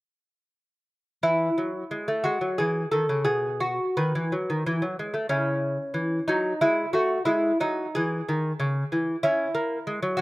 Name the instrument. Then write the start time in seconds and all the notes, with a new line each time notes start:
lute
1.23 E3 E4
1.58 F#3
1.91 G#3
2.08 A3
2.24 G#3 F#4
2.41 F#3
2.58 E3 G#4
2.91 D#3 A4
3.09 C#3
3.24 B2 G#4
3.60 F#4
3.97 D#3 B4
4.15 E3
4.32 F#3
4.50 D#3
4.66 E3
4.82 F#3
4.99 G#3
5.14 A3
5.29 C#3 C#4 E4
5.94 E3
6.28 F#3 D#4
6.61 G#3 E4
6.93 A3 F#4
7.25 G#3 E4
7.60 F#3 D#4
7.95 E3 G#4
8.29 D#3
8.60 C#3
8.92 E3
9.23 C#4 E4
9.55 A#3
9.87 G#3
10.03 F#3
10.17 F#4